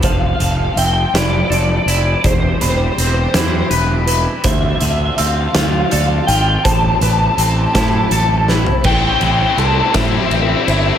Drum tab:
CC |------------|------------|------------|------------|
RD |------------|------------|------------|------------|
HH |x-x-x-x-x-x-|x-x-x-x-x-x-|x-x-x-x-x-x-|x-x-x-x-x---|
SD |------o-----|------o-----|------o-----|------o---o-|
FT |------------|------------|------------|-----------o|
BD |o-----------|o-----------|o-----------|o-----o-----|

CC |x-----------|
RD |--x-x-x-x-x-|
HH |------------|
SD |------o-----|
FT |------------|
BD |o-----o-----|